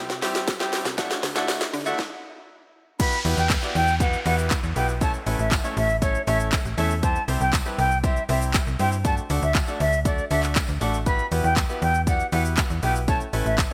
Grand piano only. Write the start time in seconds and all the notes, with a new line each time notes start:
0.22 G3 C4 E4 G4
0.60 G3 C4 E4 G4
0.98 A3 D4 E4 F#4
1.35 A3 D4 E4 F#4
1.86 A3 D4 E4 F#4
2.99 B3 E4 F#4 G4 B4
3.25 B3 E4 F#4 G4 B4
3.62 B3 E4 F#4 G4 D5
4.00 B3 E4 F#4 G4 B4
4.25 B3 E4 F#4 G4 B4
4.76 B3 E4 F#4 G4 B4
5.01 A3 C#4 E4 A4 C#5
5.26 A3 C#4 E4 A4 B4
5.64 A3 C#4 E4 A4 C#5
6.02 A3 C#4 E4 A4 C#5
6.27 A3 C#4 E4 A4 C#5
6.78 A3 C#4 E4 A4 E5
7.03 G3 C4 E4 G4 C5
7.28 G3 C4 E4 G4 C5
7.66 G3 C4 E4 G4 B4
8.04 G3 C4 E4 G4 C5
8.29 G3 C4 E4 G4 C5
8.79 G3 C4 E4 G4 C5
9.05 A3 D4 F#4 A4 D5
9.30 A3 D4 F#4 A4 D5
9.68 A3 D4 F#4 A4 D5
10.05 A3 D4 F#4 A4 D5
10.31 A3 D4 F#4 A4 D5
10.81 A3 D4 F#4 A4 D5
11.06 B3 E4 F#4 G4 B4
11.31 B3 E4 F#4 G4 B4
11.69 B3 E4 F#4 G4 B4
12.07 B3 E4 F#4 G4 D5
12.32 B3 E4 F#4 G4 B4
12.83 B3 E4 F#4 G4 B4
13.08 A3 C#4 E4 A4 C#5
13.33 A3 C#4 E4 A4 B4